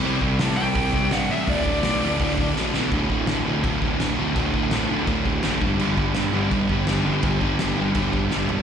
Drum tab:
CC |--------|--------|x-x-x-x-|x-x-x-x-|
HH |--o-o-o-|o-o-o---|--------|--------|
SD |--o---o-|--o---oo|--o---o-|--o---o-|
FT |--------|--------|--------|--------|
BD |-o--oo--|oo--oo--|oo--oo--|oo--oo-o|

CC |x-x-x-x-|x-x-x---|
HH |--------|--------|
SD |--o---o-|--o---o-|
FT |--------|-------o|
BD |-o--oo--|oo--oo--|